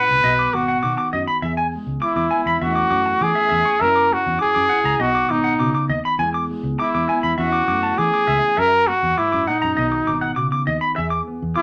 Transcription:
0.00 0.23 A#2 medium
0.00 0.20 C#4 medium
0.00 0.24 E4 medium
0.00 0.56 B4 loud
0.09 0.20 C2 medium
0.24 0.46 B1 loud
0.24 0.83 B2 medium
0.24 1.13 F#4 medium
0.24 0.32 D#5 medium
0.39 0.48 D6 medium
0.53 0.76 G#1 medium
0.53 1.39 B3 medium
0.53 1.13 F#4 medium
0.53 0.62 D6 medium
0.68 0.77 F#5 medium
0.83 0.94 B2 medium
0.83 1.39 D#3 medium
0.83 0.92 D6 medium
0.98 1.07 D6 medium
1.13 1.24 F#2 medium
1.13 1.39 F#4 medium
1.13 1.22 D#5 medium
1.28 1.36 B5 medium
1.42 1.76 E2 medium
1.42 2.62 E2 medium
1.42 2.59 G#4 medium
1.42 1.51 E5 medium
1.57 1.66 G#5 medium
1.75 2.59 G#3 medium
1.87 1.98 C#2 medium
2.02 2.64 E4 medium
2.02 2.11 D6 medium
2.02 muted clean electric guitar stroke medium
2.16 2.27 E2 medium
2.16 2.25 D6 medium
2.31 2.63 B3 medium
2.31 2.40 G#5 medium
2.46 2.57 E2 medium
2.46 2.56 B5 medium
2.61 2.84 E2 loud
2.61 3.51 E2 medium
2.61 3.78 E3 medium
2.61 2.92 A3 medium
2.61 3.25 F#4 medium
2.61 2.70 E5 medium
2.65 3.79 C#4 medium
2.65 3.83 E4 medium
2.76 2.85 D6 medium
2.90 3.13 F#2 medium
2.90 3.78 A3 medium
2.90 3.00 D6 medium
3.06 muted clean electric guitar stroke medium
3.21 3.32 E3 medium
3.21 3.83 G#4 medium
3.21 3.30 D6 medium
3.35 3.45 E5 medium
3.49 3.62 E2 medium
3.49 3.81 E2 medium
3.49 3.59 E5 medium
3.65 3.75 C#6 medium
3.79 4.15 F#2 medium
3.79 4.97 F#2 medium
3.79 4.41 F#3 medium
3.79 4.15 A#4 loud
3.79 3.89 E5 medium
3.84 4.12 A#3 medium
3.84 4.98 C#4 medium
3.84 4.71 E4 medium
3.96 4.05 D6 medium
4.13 4.98 A#3 medium
4.13 4.41 F#4 medium
4.26 4.37 E2 medium
4.39 4.97 F#3 medium
4.39 5.02 G#4 medium
4.39 4.49 D6 medium
4.55 4.67 F#2 medium
4.55 4.64 D6 medium
4.69 5.01 E4 medium
4.69 4.79 F#5 medium
4.84 4.96 C#2 medium
4.84 4.94 A#5 medium
4.99 5.22 B1 medium
4.99 5.60 B2 medium
4.99 6.16 D#4 medium
4.99 5.32 F#4 medium
4.99 5.09 D#5 medium
5.15 5.24 D6 medium
5.29 5.52 G#1 medium
5.29 6.16 B3 medium
5.29 5.90 D#4 medium
5.29 5.38 D6 medium
5.44 5.53 F#5 medium
5.60 5.71 B2 medium
5.60 5.90 C#3 medium
5.60 5.69 D6 medium
5.75 5.84 D6 medium
5.89 6.01 D#2 medium
5.89 6.19 D#3 medium
5.89 5.99 D#5 medium
6.05 6.14 B5 medium
6.19 7.37 E2 medium
6.19 6.53 E2 medium
6.19 6.79 E3 medium
6.19 6.49 G#3 medium
6.19 7.09 B3 medium
6.19 7.36 G#4 medium
6.19 6.28 G#5 medium
6.34 6.43 D6 medium
6.51 7.36 G#3 medium
6.63 6.75 C#2 medium
6.79 7.36 E3 medium
6.79 7.35 E4 medium
6.79 6.88 D6 medium
6.95 7.06 E2 medium
6.95 7.03 D6 medium
7.09 7.39 B3 medium
7.09 7.18 G#5 medium
7.23 7.35 E2 medium
7.23 7.32 B5 medium
7.38 7.61 E2 loud
7.38 8.57 E2 medium
7.38 7.98 E3 medium
7.38 8.56 C#4 medium
7.38 8.00 F#4 medium
7.38 7.47 E5 medium
7.38 muted clean electric guitar stroke medium
7.42 8.29 E4 medium
7.52 7.62 D6 medium
7.68 7.91 F#2 medium
7.68 8.55 A3 medium
7.68 7.77 D6 medium
7.83 7.92 A5 medium
7.98 8.10 E3 medium
7.98 8.55 E3 medium
7.98 8.61 G#4 medium
7.98 8.07 D6 medium
8.14 8.23 D6 medium
8.28 8.39 C#2 medium
8.28 8.59 E4 medium
8.28 8.37 E5 medium
8.57 8.92 F#2 medium
8.57 9.17 F#2 medium
8.57 9.74 F#4 medium
8.57 8.89 A#4 medium
8.57 8.67 E5 medium
8.88 9.74 A#3 medium
8.88 9.19 F#4 medium
9.03 9.14 E2 medium
9.18 9.48 G#2 medium
9.18 9.49 E4 medium
9.18 9.27 D6 medium
9.32 9.44 F#2 medium
9.32 9.41 D6 medium
9.47 9.77 A#2 medium
9.47 10.37 D#4 medium
9.47 9.57 F#5 medium
9.62 9.75 F#2 medium
9.62 9.71 A#5 medium
9.77 10.00 B1 medium
9.77 10.37 B2 medium
9.77 10.65 D#3 medium
9.77 10.07 B3 medium
9.77 10.95 D#4 medium
9.77 10.95 F#4 medium
9.77 9.86 D#5 medium
9.92 muted clean electric guitar stroke medium
10.07 10.30 G#1 medium
10.07 10.94 B3 medium
10.07 10.16 D6 medium
10.21 10.31 F#5 medium
10.36 10.48 B2 medium
10.36 10.67 C#3 medium
10.36 10.46 D6 medium
10.52 10.61 D6 medium
10.66 10.79 D#2 medium
10.66 10.97 D#3 medium
10.66 10.76 D#5 medium
10.81 10.90 B5 medium
10.96 11.62 E2 medium
10.96 11.20 E2 medium
10.96 11.62 G#4 medium
10.96 11.05 E5 medium
11.10 11.20 D6 medium
11.27 11.62 B3 medium
11.42 11.53 E2 medium
11.56 11.62 E3 medium
11.56 11.62 E4 medium
11.56 11.62 D6 medium

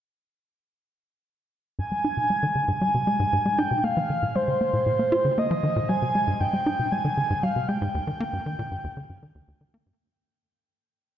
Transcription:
1.79 1.85 G#2 loud
1.79 2.81 G#5 loud
1.92 1.96 G#3 medium
2.04 2.08 D#4 loud
2.17 2.24 C3 medium
2.30 2.40 G#3 medium
2.43 2.47 D#3 loud
2.55 2.62 D3 medium
2.68 2.72 G#2 loud
2.81 2.91 G3 medium
2.81 3.60 G#5 loud
2.95 3.04 C3 medium
3.07 3.17 G#3 medium
3.20 3.26 G#2 medium
3.33 3.39 G#2 loud
3.46 3.49 G#3 medium
3.58 3.62 D#4 medium
3.58 3.85 G5 loud
3.71 3.78 C3 medium
3.84 3.93 A#3 medium
3.84 4.37 F5 loud
3.97 4.01 F3 loud
4.10 4.16 D#3 medium
4.23 4.26 A#2 loud
4.36 4.45 G#3 medium
4.36 5.40 C5 loud
4.48 4.58 D3 medium
4.61 4.70 A#3 medium
4.73 4.80 A#2 medium
4.86 4.93 A#2 medium
4.99 5.03 A#3 medium
5.12 5.16 F4 loud
5.25 5.31 D3 medium
5.38 5.47 A#3 medium
5.38 5.88 D#5 loud
5.51 5.55 F3 loud
5.63 5.70 D#3 medium
5.76 5.80 A#2 loud
5.89 5.99 G3 medium
5.89 6.42 G#5 loud
6.02 6.12 C3 medium
6.15 6.24 G#3 medium
6.28 6.34 G#2 loud
6.40 6.47 G#2 loud
6.40 6.93 G5 loud
6.53 6.57 G#3 medium
6.66 6.70 D#4 loud
6.79 6.86 C3 medium
6.92 7.02 G#3 medium
6.92 7.45 G#5 loud
7.05 7.08 D#3 loud
7.17 7.24 D3 medium
7.30 7.34 G#2 loud
7.43 7.53 G3 medium
7.43 7.70 F5 medium
7.56 7.66 C3 medium
7.68 7.78 G#3 medium
7.68 9.48 G5 loud
7.82 7.88 G#2 loud
7.95 8.01 D#2 loud
8.07 8.11 D#3 medium
8.20 8.24 A#3 loud
8.33 8.39 G2 medium
8.46 8.55 D#3 medium
8.59 8.62 A#2 loud
8.71 8.78 G2 medium
8.84 8.88 D#2 loud
8.97 9.06 D3 medium
9.10 9.19 G2 medium
9.23 9.32 D#3 medium
9.35 9.42 D#2 loud
9.48 9.54 D#2 loud
9.61 9.65 D#3 medium
9.74 9.78 A#3 loud
9.86 9.93 G2 medium

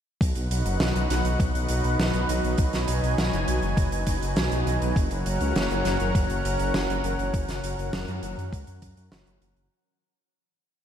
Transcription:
0.21 0.33 B1 loud
0.21 9.67 F#3 medium
0.21 4.92 D#4 medium
0.21 4.92 B4 medium
0.21 2.56 F#5 medium
0.21 kick loud
0.21 closed hi-hat medium
0.35 0.48 B1 medium
0.35 closed hi-hat medium
0.51 0.63 B1 medium
0.51 closed hi-hat loud
0.65 0.78 F#1 medium
0.65 closed hi-hat medium
0.80 0.92 B1 loud
0.80 snare loud
0.80 closed hi-hat medium
0.95 1.07 B1 medium
0.95 closed hi-hat medium
1.10 1.22 B1 medium
1.10 snare soft
1.10 closed hi-hat loud
1.25 1.37 B1 medium
1.25 closed hi-hat medium
1.40 1.52 B1 loud
1.40 kick loud
1.40 closed hi-hat medium
1.55 1.67 B1 medium
1.55 closed hi-hat medium
1.69 1.82 B1 medium
1.69 closed hi-hat medium
1.84 1.96 B1 medium
1.84 closed hi-hat medium
1.99 2.11 B1 loud
1.99 snare loud
1.99 closed hi-hat medium
2.13 2.26 B1 medium
2.13 closed hi-hat medium
2.29 2.41 B1 medium
2.29 closed hi-hat loud
2.44 2.56 B1 medium
2.44 closed hi-hat medium
2.58 2.71 B1 loud
2.58 4.94 G#5 medium
2.58 kick loud
2.58 closed hi-hat medium
2.73 2.85 B1 medium
2.73 snare soft
2.73 closed hi-hat soft
2.88 3.00 B1 medium
2.88 closed hi-hat loud
3.03 3.15 B1 medium
3.03 closed hi-hat medium
3.18 3.30 B1 loud
3.18 snare loud
3.18 closed hi-hat medium
3.33 3.45 F#1 medium
3.33 closed hi-hat medium
3.48 3.60 B1 medium
3.48 closed hi-hat medium
3.62 3.75 F#1 medium
3.62 closed hi-hat soft
3.77 3.89 F#1 loud
3.77 kick loud
3.77 closed hi-hat medium
3.92 4.04 F#1 medium
3.92 closed hi-hat medium
4.07 4.19 F#1 medium
4.07 kick medium
4.07 closed hi-hat medium
4.22 4.34 F#1 medium
4.22 closed hi-hat medium
4.36 4.49 B1 loud
4.36 snare loud
4.36 closed hi-hat medium
4.51 4.64 B1 medium
4.51 closed hi-hat medium
4.67 4.79 B1 medium
4.67 closed hi-hat medium
4.82 4.94 B1 medium
4.82 closed hi-hat medium
4.96 5.08 F#1 loud
4.96 9.68 C#4 medium
4.96 9.67 A#4 medium
4.96 9.67 F#5 medium
4.96 kick loud
4.96 closed hi-hat medium
5.11 5.23 F#1 medium
5.11 closed hi-hat medium
5.26 5.38 F#1 medium
5.26 closed hi-hat medium
5.41 5.53 C#2 medium
5.41 closed hi-hat medium
5.56 5.68 F#1 loud
5.56 snare loud
5.56 closed hi-hat medium
5.71 5.83 F#1 medium
5.71 closed hi-hat medium
5.85 5.97 F#1 medium
5.85 snare soft
5.85 closed hi-hat medium
6.00 6.12 F#1 medium
6.00 closed hi-hat medium
6.15 6.27 F#1 loud
6.15 kick loud
6.15 closed hi-hat medium
6.30 6.42 F#1 medium
6.30 closed hi-hat medium
6.45 6.57 F#1 medium
6.45 closed hi-hat loud
6.59 6.72 F#1 medium
6.59 closed hi-hat medium
6.74 6.87 F#1 loud
6.74 snare loud
6.74 closed hi-hat medium
6.89 7.01 F#1 medium
6.89 closed hi-hat medium
7.04 7.16 F#1 medium
7.04 closed hi-hat medium
7.19 7.31 F#1 medium
7.19 closed hi-hat medium
7.34 7.46 F#1 loud
7.34 kick loud
7.34 closed hi-hat medium
7.48 7.61 F#1 medium
7.48 snare soft
7.48 closed hi-hat medium
7.64 7.76 F#1 medium
7.64 closed hi-hat medium
7.78 7.90 F#1 medium
7.78 closed hi-hat medium
7.93 8.05 F#1 loud
7.93 snare loud
7.93 closed hi-hat medium
8.08 8.20 F#2 medium
8.08 closed hi-hat soft
8.23 8.35 F#1 medium
8.23 closed hi-hat loud
8.38 8.50 F#2 medium
8.38 closed hi-hat soft
8.53 8.65 C#2 loud
8.53 kick loud
8.53 closed hi-hat medium
8.67 8.80 F#2 medium
8.67 closed hi-hat medium
8.82 8.94 F#2 medium
8.82 kick medium
8.82 closed hi-hat medium
8.97 9.09 F#2 medium
8.97 closed hi-hat medium
9.12 9.24 F#1 loud
9.12 snare loud
9.12 closed hi-hat medium
9.27 9.39 F#1 medium
9.27 closed hi-hat medium
9.42 9.54 F#1 medium
9.42 closed hi-hat medium
9.56 9.69 F#1 medium
9.56 closed hi-hat medium

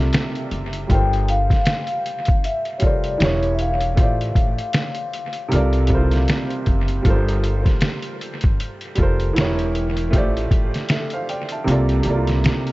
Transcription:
0.00 0.91 C3 medium
0.00 0.87 G3 medium
0.00 0.89 F4 medium
0.00 0.91 A4 medium
0.00 0.91 A#4 medium
0.00 0.92 D5 loud
0.00 0.78 E5 medium
0.13 snare loud
0.13 closed hi-hat medium
0.35 closed hi-hat soft
0.51 0.87 F#1 medium
0.51 closed hi-hat soft
0.73 closed hi-hat medium
0.87 1.47 G1 loud
0.87 2.23 G3 medium
0.87 2.24 F4 medium
0.87 2.25 A4 medium
0.87 1.30 G5 loud
0.87 kick loud
0.87 closed hi-hat medium
0.93 2.26 A#4 medium
0.93 2.27 C5 medium
1.13 closed hi-hat soft
1.28 2.48 F5 loud
1.28 closed hi-hat medium
1.50 1.65 A1 medium
1.50 kick medium
1.50 snare soft
1.50 closed hi-hat soft
1.66 snare loud
1.66 closed hi-hat medium
1.87 closed hi-hat soft
2.06 closed hi-hat medium
2.25 2.43 G1 medium
2.25 kick medium
2.25 closed hi-hat medium
2.44 2.78 E5 medium
2.44 closed hi-hat medium
2.65 closed hi-hat soft
2.78 3.19 G3 medium
2.78 3.20 F4 medium
2.78 2.83 C#5 medium
2.78 closed hi-hat medium
2.82 3.18 F1 medium
2.82 3.21 A4 medium
2.82 3.22 A#4 medium
2.82 3.23 D5 medium
2.82 kick medium
2.87 3.23 C5 medium
3.04 closed hi-hat soft
3.18 3.94 E1 medium
3.18 3.87 E3 medium
3.18 3.88 E4 medium
3.18 3.89 G4 medium
3.18 closed hi-hat medium
3.22 3.90 A#4 medium
3.22 3.52 C#5 medium
3.22 3.91 C#5 medium
3.22 snare loud
3.43 closed hi-hat soft
3.55 3.60 E5 medium
3.59 6.64 F5 medium
3.59 closed hi-hat medium
3.81 closed hi-hat medium
3.95 4.33 A1 loud
3.95 5.31 A3 medium
3.95 5.32 F4 medium
3.95 5.33 G4 medium
3.95 kick loud
3.95 closed hi-hat medium
4.01 5.34 C5 medium
4.01 5.35 D5 medium
4.21 closed hi-hat soft
4.35 4.57 A1 medium
4.35 kick medium
4.35 closed hi-hat medium
4.58 closed hi-hat soft
4.73 snare loud
4.73 closed hi-hat medium
4.95 closed hi-hat soft
5.13 closed hi-hat medium
5.33 closed hi-hat medium
5.48 6.25 C2 loud
5.48 5.84 C3 loud
5.48 5.85 G3 medium
5.48 5.85 F4 medium
5.48 closed hi-hat medium
5.53 5.86 A4 medium
5.53 5.87 A#4 medium
5.53 5.88 D5 loud
5.73 closed hi-hat soft
5.87 6.90 C3 medium
5.87 6.91 G3 medium
5.87 5.98 E4 medium
5.87 kick medium
5.87 closed hi-hat medium
5.91 6.92 A4 medium
5.91 6.93 A#4 medium
5.91 6.94 C5 medium
5.96 6.95 F4 medium
6.11 snare soft
6.11 closed hi-hat soft
6.28 snare loud
6.28 closed hi-hat medium
6.50 closed hi-hat soft
6.66 7.03 F#1 medium
6.66 kick medium
6.66 closed hi-hat soft
6.88 closed hi-hat soft
7.02 7.62 G1 loud
7.02 8.38 G3 medium
7.02 8.39 F4 medium
7.02 kick loud
7.02 closed hi-hat medium
7.07 8.40 A4 medium
7.07 8.41 A#4 medium
7.07 8.42 C5 loud
7.28 closed hi-hat medium
7.44 closed hi-hat medium
7.66 7.81 A1 medium
7.66 kick loud
7.66 snare soft
7.66 closed hi-hat soft
7.81 snare loud
7.81 closed hi-hat medium
8.02 closed hi-hat soft
8.21 closed hi-hat medium
8.41 8.58 G1 medium
8.41 kick loud
8.41 closed hi-hat medium
8.60 closed hi-hat medium
8.81 closed hi-hat soft
8.95 9.33 F1 medium
8.95 9.35 G3 medium
8.95 9.36 F4 medium
8.95 9.37 A4 medium
8.95 kick medium
8.95 closed hi-hat medium
9.01 9.37 A#4 medium
9.01 9.38 C5 medium
9.20 closed hi-hat soft
9.33 10.09 E1 medium
9.33 10.02 E3 loud
9.33 10.03 E4 medium
9.33 9.44 F#4 medium
9.33 closed hi-hat medium
9.38 10.05 A#4 medium
9.38 10.06 C#5 loud
9.38 snare loud
9.44 10.08 G4 medium
9.59 closed hi-hat soft
9.75 closed hi-hat soft
9.97 closed hi-hat medium
10.10 10.49 A1 loud
10.10 11.46 A3 medium
10.10 11.47 F4 medium
10.10 11.48 G4 medium
10.10 kick loud
10.10 closed hi-hat medium
10.16 10.91 C5 medium
10.16 10.92 D5 loud
10.37 closed hi-hat soft
10.51 10.72 A1 medium
10.51 kick loud
10.51 closed hi-hat medium
10.74 snare soft
10.74 closed hi-hat soft
10.89 11.12 A4 medium
10.89 11.12 E5 medium
10.89 snare loud
10.89 closed hi-hat medium
11.10 11.28 C5 medium
11.10 11.28 F5 medium
11.10 closed hi-hat soft
11.29 11.51 D5 medium
11.29 11.50 G5 medium
11.29 closed hi-hat medium
11.49 11.88 E5 medium
11.49 11.88 A5 medium
11.49 closed hi-hat medium
11.64 12.03 C2 loud
11.64 11.99 C3 medium
11.64 12.00 G3 medium
11.64 12.01 A#3 medium
11.64 closed hi-hat medium
11.69 12.02 F4 medium
11.69 12.03 A4 medium
11.69 12.03 D5 loud
11.89 closed hi-hat soft
12.02 12.46 C2 medium
12.02 12.72 C3 medium
12.02 12.72 G3 medium
12.02 12.72 A#3 medium
12.02 closed hi-hat medium
12.07 12.14 E4 medium
12.07 12.72 A4 medium
12.07 12.72 D5 medium
12.14 12.72 F4 medium
12.27 snare soft
12.27 closed hi-hat soft
12.44 12.72 C3 medium
12.44 snare loud
12.44 closed hi-hat medium
12.67 closed hi-hat soft

